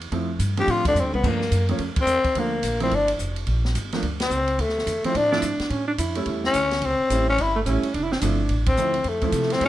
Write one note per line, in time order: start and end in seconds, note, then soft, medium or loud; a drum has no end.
0.00 0.11 E2 medium
0.00 ride soft
0.12 0.39 F2 medium
0.12 0.28 F3 medium
0.12 0.27 A3 soft
0.12 0.28 C4 soft
0.12 0.28 E4 medium
0.12 kick soft
0.12 ride soft
0.39 0.67 G2 medium
0.39 kick soft
0.39 hi-hat pedal medium
0.39 ride medium
0.57 0.94 F3 medium
0.57 0.94 A3 medium
0.57 0.94 C4 soft
0.57 0.94 D4 medium
0.57 0.72 G4 medium
0.57 ride soft
0.68 0.94 A2 medium
0.68 0.86 F4 medium
0.68 kick soft
0.68 ride soft
0.85 1.01 D4 medium
0.85 kick medium
0.85 ride medium
0.95 1.03 F2 medium
0.95 hi-hat pedal medium
0.95 high tom soft
1.00 1.13 D2 soft
1.00 1.14 C4 medium
1.13 1.22 C2 medium
1.13 1.29 B3 medium
1.13 high tom medium
1.23 1.50 G2 medium
1.23 1.40 F3 medium
1.23 1.40 A3 soft
1.23 1.40 A#3 soft
1.23 1.40 D4 medium
1.23 kick medium
1.23 crash medium
1.27 1.71 A#3 medium
1.41 snare soft
1.51 1.78 F#2 medium
1.51 kick soft
1.51 hi-hat pedal soft
1.51 ride medium
1.69 1.79 F3 medium
1.69 1.79 A3 medium
1.69 1.79 A#3 medium
1.69 1.79 C#4 medium
1.69 ride soft
1.78 1.95 F2 medium
1.78 kick soft
1.78 ride soft
1.96 muted upright bass stroke soft
1.96 kick medium
1.96 ride medium
2.00 2.40 C4 medium
2.06 2.23 E2 medium
2.06 hi-hat pedal medium
2.24 muted upright bass stroke soft
2.24 kick soft
2.24 ride soft
2.35 2.62 D2 medium
2.35 2.51 F3 medium
2.35 2.52 A3 medium
2.35 2.52 A#3 soft
2.35 2.82 A#3 medium
2.35 2.52 D4 medium
2.35 kick soft
2.35 ride medium
2.63 2.90 A#1 medium
2.63 kick soft
2.63 hi-hat pedal medium
2.63 ride medium
2.80 2.90 F3 medium
2.80 2.91 A3 medium
2.80 2.91 A#3 medium
2.80 2.97 C4 medium
2.80 2.91 E4 medium
2.80 ride soft
2.91 3.18 G1 medium
2.91 3.10 D4 medium
2.91 kick soft
2.91 ride soft
3.08 ride medium
3.19 3.46 F1 medium
3.19 kick soft
3.19 hi-hat pedal medium
3.36 ride soft
3.47 3.74 A#1 medium
3.47 kick soft
3.47 ride soft
3.65 snare soft
3.75 4.02 G1 medium
3.75 kick soft
3.75 hi-hat pedal medium
3.75 ride medium
3.92 4.02 F3 medium
3.92 4.02 A3 medium
3.92 4.03 A#3 medium
3.92 4.03 D4 medium
3.92 snare soft
3.92 ride soft
4.02 4.29 D2 medium
4.02 kick soft
4.02 ride soft
4.20 4.62 C4 medium
4.20 snare medium
4.20 ride medium
4.30 4.57 C#2 medium
4.30 hi-hat pedal soft
4.48 ride soft
4.59 4.86 D2 medium
4.59 5.05 A3 medium
4.59 kick soft
4.59 ride medium
4.69 snare soft
4.78 snare soft
4.86 5.03 E2 medium
4.86 kick soft
4.86 hi-hat pedal medium
4.86 ride medium
5.04 5.14 F3 medium
5.04 5.14 A3 medium
5.04 5.18 C4 medium
5.04 5.14 C4 soft
5.04 5.15 E4 medium
5.04 muted upright bass stroke soft
5.04 ride soft
5.15 5.42 A2 medium
5.15 5.33 D4 medium
5.15 kick soft
5.15 ride medium
5.32 5.42 F3 medium
5.32 5.42 A3 medium
5.32 5.42 C4 medium
5.32 5.72 D4 medium
5.32 5.42 E4 medium
5.32 snare soft
5.42 5.59 G2 medium
5.42 kick soft
5.42 hi-hat pedal medium
5.42 ride medium
5.59 muted upright bass stroke soft
5.59 snare soft
5.59 ride soft
5.70 5.97 A2 medium
5.70 5.87 C#4 medium
5.70 kick soft
5.70 ride soft
5.88 5.92 D4 medium
5.98 6.26 F2 medium
5.98 6.33 E4 medium
5.98 kick soft
5.98 hi-hat pedal medium
5.98 ride medium
6.15 6.52 G3 medium
6.15 6.52 A3 medium
6.15 6.53 C#4 medium
6.15 6.53 E4 medium
6.15 ride soft
6.26 6.53 E2 medium
6.26 kick soft
6.26 ride soft
6.44 6.87 C#4 medium
6.44 snare soft
6.54 6.81 D2 medium
6.54 kick soft
6.54 hi-hat pedal soft
6.54 ride medium
6.71 snare soft
6.71 ride soft
6.81 6.98 C#2 medium
6.81 kick soft
6.81 ride medium
6.86 7.29 C4 medium
7.00 muted upright bass stroke soft
7.10 7.37 A1 medium
7.10 7.26 G3 medium
7.10 7.26 A3 soft
7.10 7.27 C#4 medium
7.10 7.27 E4 medium
7.10 kick soft
7.10 hi-hat pedal medium
7.10 ride medium
7.29 7.43 C#4 medium
7.38 7.65 G1 medium
7.38 7.57 E4 medium
7.38 kick soft
7.38 ride medium
7.56 7.60 A3 medium
7.66 7.82 A1 medium
7.66 7.82 G3 medium
7.66 7.82 A3 medium
7.66 7.96 C#4 medium
7.66 7.83 C#4 medium
7.66 7.83 E4 medium
7.66 kick soft
7.66 hi-hat pedal soft
7.66 ride medium
7.83 muted upright bass stroke soft
7.83 ride soft
7.94 8.21 F1 medium
7.94 8.05 D4 medium
7.94 kick soft
7.94 ride soft
8.03 8.14 E4 loud
8.12 8.22 C4 medium
8.12 snare medium
8.20 8.49 G1 medium
8.20 8.38 F3 medium
8.20 8.38 A3 medium
8.20 8.38 C4 medium
8.20 8.58 D4 medium
8.20 8.38 E4 medium
8.20 kick soft
8.20 hi-hat pedal medium
8.20 ride medium
8.49 8.76 A1 medium
8.49 kick soft
8.49 ride medium
8.66 9.10 C4 medium
8.66 kick medium
8.66 ride medium
8.77 9.04 D2 medium
8.77 8.93 F3 soft
8.77 8.94 A3 soft
8.77 8.94 C4 soft
8.77 8.94 E4 medium
8.77 hi-hat pedal soft
8.94 ride soft
9.04 9.32 F2 medium
9.04 kick soft
9.04 ride medium
9.08 9.54 A3 medium
9.21 9.59 F3 medium
9.21 9.59 A3 medium
9.21 9.59 C4 medium
9.21 9.60 E4 medium
9.21 kick medium
9.21 ride soft
9.32 9.60 C3 medium
9.32 kick soft
9.32 hi-hat pedal medium
9.32 ride medium
9.42 snare soft
9.50 9.62 C4 medium
9.50 snare soft
9.50 ride soft
9.61 9.68 A2 medium
9.61 9.68 G3 medium
9.61 9.68 A3 medium
9.61 9.68 C#4 medium
9.61 9.68 E4 medium
9.61 kick soft
9.61 ride medium